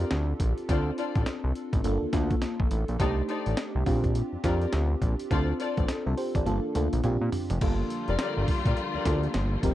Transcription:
Already playing: C4 D4 F4 G4 A4
0.00 closed hi-hat
0.11 D2, snare, closed hi-hat
0.40 A#1, kick, closed hi-hat
0.58 closed hi-hat
0.69 D2 C4 D4 F4 A4 C5 D5, kick, closed hi-hat
0.98 F4 A4 C5 D5, closed hi-hat
1.15 A1, kick, closed hi-hat
1.26 snare, closed hi-hat
1.44 C2
1.55 closed hi-hat
1.73 A1, kick, closed hi-hat
1.84 G1 A#3 D4 F4 A4, closed hi-hat
2.02 D2
2.13 D2 A#3 D4 F4 A4, kick, snare, closed hi-hat
2.31 kick, closed hi-hat
2.42 snare, closed hi-hat
2.60 A#1, kick
2.71 A1, closed hi-hat
2.88 A#1, closed hi-hat
3.00 C2 A3 D4 D#4 G4 A4 C5 D5, kick, closed hi-hat
3.28 D#4 A4 C5 D5, closed hi-hat
3.46 A1, closed hi-hat
3.57 snare, closed hi-hat
3.75 C2
3.86 A#1 C4 D4 F4 G4, kick, open hi-hat
4.04 kick, closed hi-hat
4.15 closed hi-hat
4.33 F2
4.44 F2 C4 D4 F4 G4 A#4 D5, kick, snare, closed hi-hat
4.61 closed hi-hat
4.73 D2, snare, closed hi-hat
5.01 A#1, kick, closed hi-hat
5.19 closed hi-hat
5.31 D2 C4 D4 F4 A4 C5 D5, kick, closed hi-hat
5.59 F4 A4 C5 D5, closed hi-hat
5.77 A1, kick, closed hi-hat
5.88 snare, closed hi-hat
6.06 C2 D4 A4
6.17 G4 C5, open hi-hat
6.35 A1 A4 D5, kick, closed hi-hat
6.46 G1 A#3 D4 F4 A4, closed hi-hat, high tom
6.75 D2 A#3 D4 F4 A4, closed hi-hat, mid tom
6.93 A#1, closed hi-hat, mid tom
7.03 A#1 C4 D4 F4 G4, closed hi-hat, mid tom
7.21 A#2
7.32 floor tom, open hi-hat
7.50 F1, closed hi-hat, floor tom
7.61 G1 D3 F3 G3 A#3 D4 F4 A4, kick, closed hi-hat, crash
7.90 closed hi-hat
8.08 F1 F4 G4 A#4 D5, closed hi-hat
8.19 F4 G4 A#4 D5, snare, closed hi-hat
8.37 G1
8.48 kick, open hi-hat
8.65 A#1 F4 G4 A#4 D5, kick, closed hi-hat
8.77 closed hi-hat
8.94 D2 F4 G4 A#4 D5
9.05 D2 A#3 D4 F4 A4, kick, snare, closed hi-hat
9.23 closed hi-hat
9.34 G1, snare, closed hi-hat
9.63 F1 C3 G3 C4 D#4 G4 A#4, kick, closed hi-hat

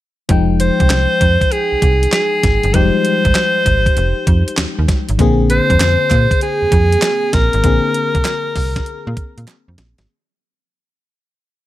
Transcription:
0.29 F1 F3 G#3 D#4 G5, kick, closed hi-hat
0.60 C5, closed hi-hat
0.80 C2, kick, closed hi-hat
0.90 C2, snare, clap, closed hi-hat
1.21 F2, kick, closed hi-hat
1.41 kick, closed hi-hat
1.52 G#4, closed hi-hat
1.72 C2
1.82 C2, kick, closed hi-hat
2.03 closed hi-hat
2.12 G#4, snare, clap, closed hi-hat
2.43 G#1, kick, snare, closed hi-hat
2.63 G1, closed hi-hat
2.73 F1 F3 G3 D#4 G4 C5, kick, closed hi-hat
2.81 G#3
3.05 closed hi-hat
3.25 G#1, kick, closed hi-hat
3.35 snare, clap, closed hi-hat
3.66 G#1, kick, closed hi-hat
3.86 kick, closed hi-hat
3.97 F1, closed hi-hat
4.27 F2, kick, closed hi-hat
4.48 closed hi-hat
4.57 D#2, snare, clap, closed hi-hat
4.79 D#2
4.88 kick, snare, closed hi-hat
5.09 G#1, closed hi-hat
5.18 A#1 D3 A#3 C4 G#4, kick, closed hi-hat
5.50 C5, closed hi-hat
5.70 F2, kick, closed hi-hat
5.80 F2, snare, clap, closed hi-hat
6.10 A#2, kick, clap, closed hi-hat
6.31 kick, closed hi-hat
6.41 G#4, closed hi-hat
6.62 F2
6.72 F2, kick, closed hi-hat
6.92 closed hi-hat
7.02 snare, clap, closed hi-hat
7.33 A#1 A#4, kick, snare, closed hi-hat
7.53 G#1, closed hi-hat
7.64 A#1 D3 A#3 C4 G#4, kick, closed hi-hat
7.94 closed hi-hat
8.15 C2, kick, closed hi-hat
8.25 snare, clap, closed hi-hat
8.56 C2, kick, open hi-hat
8.76 kick, snare, closed hi-hat
8.86 closed hi-hat
9.07 A#2
9.17 kick, closed hi-hat
9.38 A#2, closed hi-hat
9.47 snare, clap, closed hi-hat
9.68 F2
9.78 snare, closed hi-hat
9.98 G#1, snare, closed hi-hat

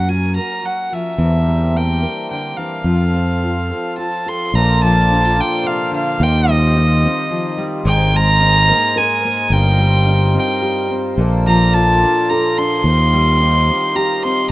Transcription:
Already playing: F#2 F#3 A#3 C#4 F#4 A#4 F#5
0.09 F#4 G#5
0.36 A#4 A#5
0.63 F#3 F#5
0.92 F3 E5
1.18 E2 E3 C4 D4 G4 A#4
1.46 G3
1.74 A#3 G5
2.02 A#4
2.31 D3 G5
2.57 E3 F5
2.84 F2 F3 F4 A4
3.14 C4
3.43 F4
3.70 A4
3.98 F4 A5
4.26 A4 C6
4.53 A#1 A#2 A#3 F4 A4 C5 D5 A#5
4.83 F3 A5
5.11 D4
5.24 F4
5.37 D4 G5
5.63 C3 F5
5.91 D3
5.96 F5
6.20 D#2 D#3 D#4 F4 G4 G5
6.47 G3 D#5
6.76 D#4
7.04 C4
7.30 F3
7.57 G3
7.85 G#1 G#2 G#3 D#4 G#4 A#4 G5
8.13 G#3 A#5
8.41 D#4
8.69 A#3
8.96 A#4 G#5
9.25 A#3
9.50 G1 G2 G3 D#4 F4 C5 G5
9.79 G3
10.06 D#4
10.34 C4
10.39 G5
10.62 G4
10.91 C4
11.18 A#1 A#2 A#3 A4 D5
11.47 F3 A#5
11.74 F4 A5
12.02 D4
12.29 A4 A#5
12.58 D4 C6
12.83 D#2 D#3 D#4 F4 G4 C5
13.13 G3
13.41 D#4
13.69 C4
13.95 G4 A#5
14.23 C4 C6
14.49 A#4

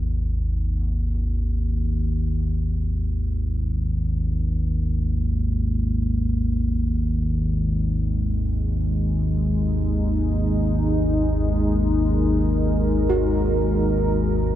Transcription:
Already playing: G#1 D#2 G#2 G#3
6.50 G#3
7.90 D#4
10.29 A#4
13.10 F#4

